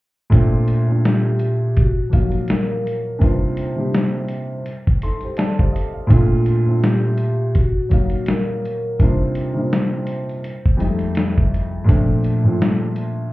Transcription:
0.30 A#2 A3 C4 D4, kick, closed hi-hat
0.34 F4
0.68 closed hi-hat
0.87 A#2 A3 C4 D4
0.92 F4
1.05 G4, snare, closed hi-hat
1.39 closed hi-hat
1.77 F#4, kick, closed hi-hat
2.10 F3 A#3 D#4, kick, closed hi-hat
2.14 F#3 F5
2.32 closed hi-hat
2.48 snare, closed hi-hat
2.52 A#4
2.87 closed hi-hat
3.18 C3 G3 A#3 D4 B4, kick, closed hi-hat
3.22 D#4 F4 C5
3.57 closed hi-hat
3.76 C3 G3 A#3 D4 D#4
3.80 G4
3.95 snare, closed hi-hat
4.28 closed hi-hat
4.66 closed hi-hat
4.87 kick
5.02 D#4 A4 C6, closed hi-hat
5.21 G4 C5, closed hi-hat
5.37 A4 D5 A5, snare, closed hi-hat
5.59 G4 C5 F5, kick
5.72 A4 D#5, closed hi-hat
5.93 C5 F5
6.07 A#2 A3 C4 D4, kick, closed hi-hat
6.11 F4
6.46 closed hi-hat
6.66 A#2 A3 C4 D4
6.70 F4
6.84 G4, snare, closed hi-hat
7.18 closed hi-hat
7.55 F#4, kick, closed hi-hat
7.89 F#3 A#3 D#4, kick, closed hi-hat
7.93 F5
8.10 closed hi-hat
8.26 A#4, snare, closed hi-hat
8.65 closed hi-hat
8.99 C3 G3 A#3 D4 D#4 C5, kick, closed hi-hat
9.04 F4
9.35 closed hi-hat
9.54 C3 G3 A#3 D4 D#4
9.58 F4
9.73 snare, closed hi-hat
10.07 closed hi-hat
10.29 closed hi-hat
10.44 closed hi-hat
10.66 kick
10.77 F2 G3 G#3 C4, closed hi-hat
10.81 D#4
10.86 A3
10.99 closed hi-hat
11.15 snare, closed hi-hat
11.38 kick
11.54 closed hi-hat
11.84 A#2 F3 A3 C4
11.89 D4, kick, closed hi-hat
12.24 closed hi-hat
12.44 A#2 F3 A3 C4
12.48 F4
12.62 snare, closed hi-hat
12.96 closed hi-hat

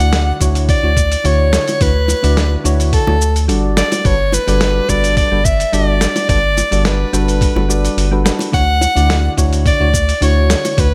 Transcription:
Already playing: F#5
0.00 D2 D3 D4 E4 F#4 D5, shaker
0.13 snare, open hi-hat, shaker
0.40 D2 D3 D4 E4 F#4 C#5, kick, open hi-hat, shaker
0.55 open hi-hat, shaker
0.69 D5, kick, open hi-hat, shaker
0.83 D2 D3 D4 E4 F#4 C#5
0.97 kick, shaker
1.12 open hi-hat, shaker
1.24 D2 D3 D4 E4 F#4 C#5, open hi-hat, shaker
1.53 snare, open hi-hat, shaker
1.68 open hi-hat, high bongo, shaker
1.80 D2 D3 D4 E4 F#4 B4 C#5, kick, open hi-hat, shaker
2.08 open hi-hat, high bongo, shaker
2.23 D2 D3 D4 E4 F#4 D5, open hi-hat, shaker
2.37 snare, open hi-hat, shaker
2.64 D2 D3 D4 E4 F#4 C#5, open hi-hat, shaker
2.80 open hi-hat, shaker
2.93 A4, kick, open hi-hat, shaker
3.07 D2 D3 D4 E4 F#4 C#5, high bongo
3.21 shaker
3.36 open hi-hat, shaker
3.48 G1 G3 D4 F#4 A4 D5, open hi-hat, shaker
3.77 D5, snare, open hi-hat, shaker
3.92 open hi-hat, high bongo, shaker
4.04 G1 G3 D4 F#4 A4 B4 C#5, kick, open hi-hat, shaker
4.32 B4, open hi-hat, high bongo, shaker
4.47 G1 G3 D4 F#4 A4 D5, open hi-hat, shaker
4.61 snare, open hi-hat, shaker
4.89 G1 G3 D4 F#4 A4 B4 D5, kick, open hi-hat, shaker
5.04 open hi-hat, shaker
5.17 D5, kick, open hi-hat, shaker
5.31 G1 G3 D4 F#4 A4 B4
5.45 E5, kick, shaker
5.60 open hi-hat, shaker
5.72 G1 G3 D4 F#4 A4 D5, open hi-hat, shaker
6.01 snare, open hi-hat, shaker
6.16 open hi-hat, high bongo, shaker
6.28 G1 G3 D4 F#4 A4 B4 D5, kick, open hi-hat, shaker
6.57 open hi-hat, high bongo, shaker
6.71 G1 G3 D4 F#4 A4 D5, open hi-hat, shaker
6.85 B4, snare, open hi-hat, shaker
7.13 G1 G3 D4 F#4 A4 B4, open hi-hat, shaker
7.28 open hi-hat, shaker
7.41 kick, open hi-hat, shaker
7.55 G1 G3 D4 F#4 A4 B4, high bongo
7.68 G3 D4 F#4 A4 D5, shaker
7.85 open hi-hat, shaker
7.97 G1, open hi-hat, shaker
8.11 G3 D4 F#4 A4 B4
8.24 G3 D4 F#4 A4 B4, snare, open hi-hat, shaker
8.39 open hi-hat, high bongo, shaker
8.52 D2 D3 D4 E4 F#4 C#5 F#5, kick, open hi-hat, shaker
8.81 open hi-hat, high bongo, shaker
8.95 D2 D3 D4 E4 F#4 D5, open hi-hat, shaker
9.10 snare, open hi-hat, shaker
9.37 D2 D3 D4 E4 F#4 C#5, kick, open hi-hat, shaker
9.53 open hi-hat, shaker
9.66 D5, kick, open hi-hat, shaker
9.79 D2 D3 D4 E4 F#4 C#5
9.94 kick, shaker
10.09 open hi-hat, shaker
10.21 D2 D3 D4 E4 F#4 C#5, open hi-hat, shaker
10.50 snare, open hi-hat, shaker
10.65 open hi-hat, high bongo, shaker
10.77 D2 D3 D4 E4 F#4 B4 C#5, kick, open hi-hat, shaker

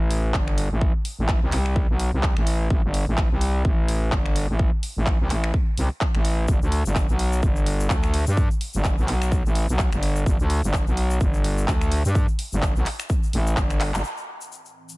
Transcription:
Already playing: A1
0.11 open hi-hat
0.34 G1, kick, clap
0.48 finger snap
0.58 open hi-hat
0.71 A1
0.81 kick
1.05 open hi-hat
1.18 A1
1.29 kick, clap
1.42 C2
1.52 C2, clap, open hi-hat
1.66 finger snap
1.76 kick
1.89 B1
2.00 open hi-hat
2.13 C2
2.23 kick, clap
2.37 A1, finger snap
2.47 open hi-hat
2.70 A1, kick
2.84 G1
2.94 open hi-hat
3.07 A1
3.18 kick, clap
3.31 C2
3.41 open hi-hat
3.65 A1, kick
3.88 open hi-hat
4.12 G1, kick, clap
4.26 finger snap
4.36 open hi-hat
4.49 A1
4.59 kick
4.83 open hi-hat
4.96 A1
5.07 kick, clap
5.20 C2
5.30 A1, clap, open hi-hat
5.44 finger snap
5.54 kick
5.77 C2, open hi-hat
6.01 kick, clap
6.15 A1, finger snap
6.25 open hi-hat
6.48 G1, kick, shaker
6.62 D2, shaker
6.72 open hi-hat
6.85 G1, shaker
6.96 kick, clap, shaker
7.09 B1, shaker
7.19 open hi-hat
7.32 shaker
7.43 G1, kick, shaker
7.56 shaker
7.66 open hi-hat
7.80 shaker
7.90 D2, kick, clap, shaker
8.03 finger snap, shaker
8.14 open hi-hat
8.27 G2, shaker
8.37 kick, shaker
8.51 shaker
8.61 open hi-hat
8.73 G1, shaker
8.84 kick, clap, shaker
8.98 B1, shaker
9.08 B1, clap, open hi-hat
9.22 finger snap, shaker
9.32 kick, shaker
9.45 A1, shaker
9.55 open hi-hat
9.69 B1, shaker
9.79 kick, clap, shaker
9.92 G1, finger snap, shaker
10.03 open hi-hat
10.16 shaker
10.26 G1, kick, shaker
10.40 D2, shaker
10.50 open hi-hat
10.63 G1, shaker
10.73 kick, clap, shaker
10.87 B1, shaker
10.97 open hi-hat
11.10 shaker
11.20 G1, kick, shaker
11.34 shaker
11.44 open hi-hat
11.58 shaker
11.68 D2, kick, clap, shaker
11.81 finger snap, shaker
11.92 open hi-hat
12.05 G2, shaker
12.15 kick, shaker
12.28 shaker
12.39 open hi-hat
12.52 G1, shaker
12.62 kick, clap, shaker
12.76 B1, shaker
12.86 clap, open hi-hat
12.99 finger snap, shaker
13.09 kick, shaker
13.23 shaker
13.33 A1, open hi-hat
13.47 shaker
13.57 G1, kick, clap, shaker
13.70 finger snap, shaker
13.81 clap, open hi-hat
13.94 G1, clap, shaker
14.04 A2 E3 C4, shaker
14.17 shaker
14.41 shaker
14.52 shaker
14.66 shaker
14.89 shaker

